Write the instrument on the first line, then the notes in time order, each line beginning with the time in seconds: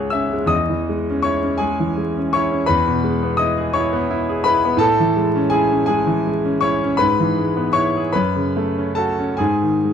grand piano
Already playing: C#2 G#2 G#3 C#4 G#4 C#5 E5 F#5 G#5 E6 F#6 G#6
0.10 C#4 E5 E6
0.33 G#3
0.46 E2 D#5 D#6
0.69 E3
0.89 G#3
1.10 C#4
1.22 E4 C#5 C#6
1.43 C#4
1.58 G#3 G#4 G#5
1.80 E3
1.97 G#3
2.17 C#4
2.33 E4 C#5 C#6
2.51 C#4
2.66 E2 B4 B5
2.87 B2
3.04 G#3
3.23 B3
3.37 D#5 D#6
3.41 E4
3.58 G#4
3.74 E4 C#5 C#6
3.93 B3
4.11 E4
4.29 G#4
4.44 E4 B4 B5
4.65 B3
4.77 A2 A4 A5
5.00 E3
5.17 G#3
5.35 C#4
5.50 E4 G#4 G#5
5.72 C#4
5.86 G#3 G#4 G#5
6.07 E3
6.27 G#3
6.45 C#4
6.61 E4 C#5 C#6
6.83 C#4
6.97 G#2 B4 B5
7.20 E3
7.38 G#3
7.57 B3
7.73 E4 C#5 C#6
7.97 G#4
8.12 F#2 B4 B5
8.36 C#3
8.57 A3
8.78 C#4
8.95 F#4 A4 A5
9.19 C#4
9.37 G#2 G#4 G#5
9.62 D#3
9.85 G#3